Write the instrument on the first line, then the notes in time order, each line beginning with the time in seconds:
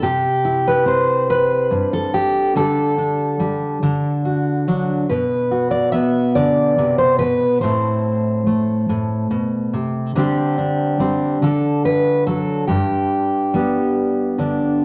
steel-string acoustic guitar
0.02 C3 G4
0.45 E4
0.67 B4
0.86 C4 C5
1.30 B4
1.71 G2
1.93 A4
2.14 G4
2.55 D3 G3 D4 A4
2.98 D4
3.40 G3
3.83 D3 D4
4.25 F#4
4.68 F#3 D4
5.09 B2 B4
5.51 F#4
5.71 D5
5.92 B3 E5
6.35 D3 D5
6.78 C3
6.98 C5
7.19 B2 B4
7.61 A2 A3 C4 E4 C5
8.47 A3
8.89 A2
9.31 B2
9.73 C3
10.15 D3 G3 C4 D4 G4
10.58 D4
10.99 G3 C4
11.42 D3 A4
11.85 B4
12.27 F#3 A4
12.67 G2 G4
13.54 G3 B3
14.38 D3 D4